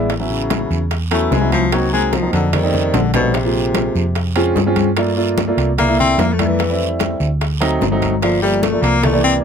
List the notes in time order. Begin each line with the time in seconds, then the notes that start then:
Already playing: A1
0.10 A2, high bongo, high conga, high timbale, long guiro
0.20 F#3 B3 C#4 E4
0.30 C#3, high bongo, high conga
0.50 high bongo, high conga, high timbale, low timbale, short guiro
0.70 E2, high bongo, high conga, short guiro
0.91 high bongo, high conga, high timbale, long guiro
1.11 F#3 A3 B3 C#4 E4, high conga, high timbale
1.31 C2 G#3, high bongo, low bongo, high conga, low timbale, short guiro
1.41 F#3 B3 C#4 E4
1.52 F3, high conga, high timbale, short guiro
1.72 F#3 A#3 C4 D#4, high bongo, high timbale, long guiro
1.92 F#3 G#3 A#3 C4 D#4, high bongo, high conga
2.13 F3, high bongo, high conga, high timbale, low timbale, short guiro
2.22 F#3 A#3 C4 D#4
2.33 F2 D3, high bongo, high conga, high timbale, short guiro
2.53 D#3 G3 A3 C4 D#4, high bongo, high conga, low conga, high timbale, long guiro
2.63 G3 A3 C4 D#4
2.73 high bongo, high conga, low conga
2.94 A#1 D3, low bongo, high conga, high timbale, low timbale, short guiro
3.14 B2 G3 A3 C4 D#4, low bongo, high conga, high timbale, short guiro
3.34 C3, high bongo, high conga, high timbale, long guiro
3.44 G#3 A#3 C4 F4
3.55 high bongo, high conga
3.74 high bongo, high conga, high timbale, low timbale, short guiro
3.95 F2, high bongo, high conga, short guiro
4.15 high bongo, high conga, high timbale, long guiro
4.36 G#3 C4 C#4 F4, high bongo, high conga, high timbale
4.56 G2, high bongo, low bongo, high conga, low timbale, short guiro
4.66 G#3 C4 C#4 F4
4.76 high conga, high timbale, short guiro
4.96 A3 A#3 D4 F4, high bongo, high conga, high timbale, long guiro
5.17 A3 A#3 D4 F4, high bongo, high conga
5.38 high bongo, high conga, high timbale, low timbale, short guiro
5.47 A3 A#3 D4 F4
5.57 C2, high bongo, high conga, high timbale, short guiro
5.78 A3 A#3 D4 E4, high bongo, high conga, low conga, high timbale, long guiro
5.88 A3 A#3 D4 E4
5.99 C4, high bongo, high conga, low conga
6.18 F2 A#3, high bongo, low bongo, high conga, high timbale, low timbale, short guiro
6.33 A3
6.39 A3 A#3 D4 E4, high conga, high timbale, short guiro
6.47 E3
6.59 high bongo, high conga, high timbale, long guiro
6.69 G3 A3 C4 E4
6.80 high bongo, high conga
6.99 high bongo, high conga, high timbale, low timbale, short guiro
7.20 D2, high bongo, high conga, short guiro
7.41 high bongo, high conga, high timbale, long guiro
7.60 F#3 A3 C4 D#4, high bongo, high conga, high timbale
7.81 G1, high bongo, low bongo, high conga, low timbale, short guiro
7.91 F#3 A3 C4 D#4
8.02 high conga, high timbale, short guiro
8.22 F3 A3 A#3 D4, high bongo, high timbale, long guiro
8.42 F3 G3 A3 A#3 D4, high bongo, high conga
8.63 A3, high bongo, high conga, high timbale, low timbale, short guiro
8.73 F3 A3 A#3 D4
8.82 C2 A#3, high bongo, high conga, high timbale, short guiro
9.02 E3 G3 A3 A#3 D4, high bongo, high conga, low conga, high timbale, long guiro
9.12 E3 G3 A#3 D4
9.24 C4, high bongo